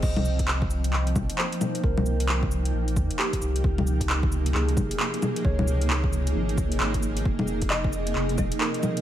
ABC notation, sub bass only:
X:1
M:4/4
L:1/16
Q:"Swing 16ths" 1/4=133
K:Cphr
V:1 name="Sub bass" clef=bass
C,,8 C,,2 B,,, z4 z | C,,8 B,,,2 E,, z3 C,,2 | D,,8 D,,2 A,,, z4 z | D,,8 A,,,2 D,, A,,, A,,,4 |
F,,,8 F,,,2 E,,, z4 z |]